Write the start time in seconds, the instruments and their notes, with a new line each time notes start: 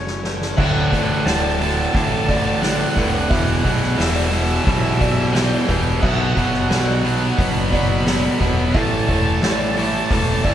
Already playing: picked electric bass F#1, clean electric guitar F#3 A3 C#4, ambient pad A3 E4 F#4 C#5, felt piano C#5
0.07 snare
0.23 clean electric guitar A3, felt piano B4, snare
0.42 snare
0.57 picked electric bass D1, distorted electric guitar D2 A2 D3, ambient pad D3 A3 F#4 D5, felt piano E5, lead electric guitar F#5, kick, crash
0.65 lead electric guitar F#5
0.73 lead electric guitar F#5
0.80 lead electric guitar F#5
0.88 distorted electric guitar D2 A2, lead electric guitar F#5
0.92 picked electric bass A1, distorted electric guitar D3, lead electric guitar F#5, kick, open hi-hat
1.04 lead electric guitar F#5
1.12 lead electric guitar F#5
1.20 lead electric guitar F#5
1.25 picked electric bass D1, distorted electric guitar D2 A2 D3, lead electric guitar A5, snare, open hi-hat
1.34 lead electric guitar A5
1.39 lead electric guitar A5
1.47 lead electric guitar A5
1.55 distorted electric guitar D2 A2, lead electric guitar A5
1.60 distorted electric guitar D3, lead electric guitar A5, open hi-hat
1.70 lead electric guitar A5
1.77 lead electric guitar A5
1.85 lead electric guitar A5
1.93 picked electric bass A1, distorted electric guitar D2 A2 D3, lead electric guitar A5, kick, open hi-hat
2.00 lead electric guitar A5
2.09 lead electric guitar A5
2.16 lead electric guitar A5
2.24 distorted electric guitar D2 A2 D3, lead electric guitar A5
2.29 felt piano D5, lead electric guitar A5, kick, open hi-hat
2.40 lead electric guitar A5
2.47 lead electric guitar A5
2.55 lead electric guitar A5
2.61 distorted electric guitar D2 A2 D3, lead electric guitar F#5, snare, open hi-hat
2.69 lead electric guitar F#5
2.76 lead electric guitar F#5
2.83 lead electric guitar F#5
2.91 distorted electric guitar D2 A2, lead electric guitar F#5
2.96 picked electric bass D1, distorted electric guitar D3, felt piano B4, lead electric guitar F#5, kick, open hi-hat
3.05 lead electric guitar F#5
3.13 lead electric guitar F#5
3.21 lead electric guitar F#5
3.29 picked electric bass E1, distorted electric guitar E2 B2 E3, ambient pad E3 B3 G4 E5, felt piano E5, lead electric guitar F#5, kick, open hi-hat
3.36 lead electric guitar F#5
3.44 lead electric guitar F#5
3.54 lead electric guitar F#5
3.61 distorted electric guitar E2 B2 E3, lead electric guitar F#5
3.65 picked electric bass B1, kick, open hi-hat
3.69 lead electric guitar F#5
3.77 lead electric guitar F#5
3.82 lead electric guitar F#5, snare
3.92 lead electric guitar F#5
3.96 picked electric bass E1, distorted electric guitar E2 B2 E3, lead electric guitar E5, snare, open hi-hat
4.04 lead electric guitar E5
4.11 lead electric guitar E5
4.20 lead electric guitar E5
4.26 distorted electric guitar E2, lead electric guitar E5
4.30 distorted electric guitar B2 E3, lead electric guitar E5, open hi-hat
4.41 lead electric guitar E5
4.48 lead electric guitar E5
4.55 lead electric guitar E5
4.64 picked electric bass B1, distorted electric guitar E2 B2 E3, lead electric guitar E5, kick, open hi-hat
4.72 lead electric guitar E5
4.80 lead electric guitar E5
4.89 lead electric guitar E5
4.95 distorted electric guitar E2 B2, lead electric guitar E5
4.99 distorted electric guitar E3, felt piano D5, kick, open hi-hat
5.04 lead electric guitar E5
5.12 lead electric guitar E5
5.19 lead electric guitar E5
5.27 lead electric guitar E5
5.32 distorted electric guitar E2 B2 E3, lead electric guitar G5, snare, open hi-hat
5.39 lead electric guitar G5
5.48 lead electric guitar G5
5.56 lead electric guitar G5
5.65 distorted electric guitar E2 B2 E3, felt piano B4, lead electric guitar G5, open hi-hat
5.69 picked electric bass E1, lead electric guitar G5, kick
6.00 picked electric bass B1, distorted electric guitar B2 F#3 B3, ambient pad B4 D5 F#5, felt piano E5, lead electric guitar F#5, kick, crash
6.08 lead electric guitar F#5
6.15 lead electric guitar F#5
6.22 lead electric guitar F#5
6.28 lead electric guitar F#5
6.35 picked electric bass F#1, distorted electric guitar B2 F#3 B3, lead electric guitar F#5, kick, open hi-hat
6.45 lead electric guitar F#5
6.53 lead electric guitar F#5, snare
6.61 lead electric guitar F#5
6.69 picked electric bass B1, distorted electric guitar B2 F#3 B3, lead electric guitar F#5, snare, open hi-hat
6.76 lead electric guitar F#5
6.85 lead electric guitar F#5
6.93 lead electric guitar F#5
7.00 distorted electric guitar B2, lead electric guitar F#5
7.04 distorted electric guitar F#3 B3, open hi-hat
7.09 lead electric guitar F#5
7.16 lead electric guitar F#5
7.24 lead electric guitar F#5
7.33 lead electric guitar F#5
7.37 picked electric bass F#1, distorted electric guitar B2 F#3 B3, lead electric guitar B5, kick, open hi-hat
7.46 lead electric guitar B5
7.53 lead electric guitar B5
7.61 lead electric guitar B5
7.69 distorted electric guitar B2 F#3 B3, felt piano D5, lead electric guitar B5, kick, open hi-hat
7.77 lead electric guitar B5
7.84 lead electric guitar B5
7.92 lead electric guitar B5
8.00 lead electric guitar B5
8.05 distorted electric guitar B2 F#3 B3, lead electric guitar B5, snare, open hi-hat
8.16 lead electric guitar B5
8.23 lead electric guitar B5
8.31 lead electric guitar B5
8.40 picked electric bass E1, distorted electric guitar B2 F#3 B3, felt piano B4, lead electric guitar B5, kick, open hi-hat
8.47 lead electric guitar B5
8.55 lead electric guitar B5
8.62 lead electric guitar B5
8.70 distorted electric guitar A2 E3, ambient pad A3 D5, lead electric guitar A5 B5, open hi-hat
8.74 picked electric bass A1, distorted electric guitar A3, ambient pad A4 E5, felt piano E5, kick
8.82 lead electric guitar A5
8.90 lead electric guitar A5
8.97 lead electric guitar A5
9.05 picked electric bass E1, distorted electric guitar A2 E3, lead electric guitar A5, kick, open hi-hat
9.10 distorted electric guitar A3, lead electric guitar A5
9.20 lead electric guitar A5
9.27 lead electric guitar A5
9.35 lead electric guitar A5
9.42 picked electric bass A1, distorted electric guitar A2 E3 A3, lead electric guitar A5, snare, open hi-hat
9.52 lead electric guitar A5
9.59 lead electric guitar A5
9.67 lead electric guitar A5
9.74 distorted electric guitar A2 E3 A3, lead electric guitar A5, open hi-hat
9.82 lead electric guitar A5
9.90 lead electric guitar A5
9.98 lead electric guitar A5
10.05 lead electric guitar A5
10.10 picked electric bass E1, distorted electric guitar A2 E3 A3, lead electric guitar A5, kick, open hi-hat
10.21 lead electric guitar A5
10.28 lead electric guitar A5
10.35 lead electric guitar A5
10.43 picked electric bass F#1, distorted electric guitar A2 E3 A3, felt piano D5, lead electric guitar A5, kick, open hi-hat
10.50 lead electric guitar A5